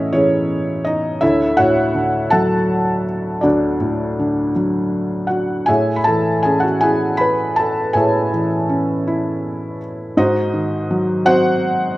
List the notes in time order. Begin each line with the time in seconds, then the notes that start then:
Already playing: A2 E3 C#4 D#4 E4 G#4 C#5 D#5 E5
0.13 E3 C#4 G#4 C#5
0.85 D#4 D#5
1.21 D2 E4 A4 C#5 E5
1.57 A2 F#4 C#5 F#5
1.94 D3
2.30 F#3 A4 F#5 A5
3.41 D2 D4 F#4 A4 D5
3.80 A2
4.19 D3
4.56 F#3
5.27 F#4 F#5
5.66 A2 G#4 C#5 E5 G#5
5.96 B5
6.04 E3 A4 A5
6.43 C#4 G#4 G#5
6.60 F#4 F#5
6.81 E4 G#4 G#5
7.17 B4 B5
7.56 A4 A5
7.93 A2 G#4 C#5 E5 G#5
8.33 E3
8.69 C#4
9.07 E4
10.17 G#2 D#4 F#4 C5 D#5
10.54 D#3
10.91 F#3
11.25 C4 F#4 C5 F#5